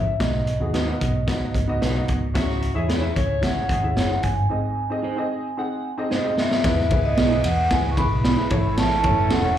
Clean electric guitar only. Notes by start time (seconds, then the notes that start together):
0.74 D#4 F#4 B4
1.80 D#4 F#4 B4
2.88 E4 G#4 C#5
3.96 E4 G#4 C#5
5.02 D#4 G#4 C5
6.10 D#4 G#4 C5
7.17 B3 E4 G#4
8.24 B3 E4 G#4
9.30 C#4 E4 A4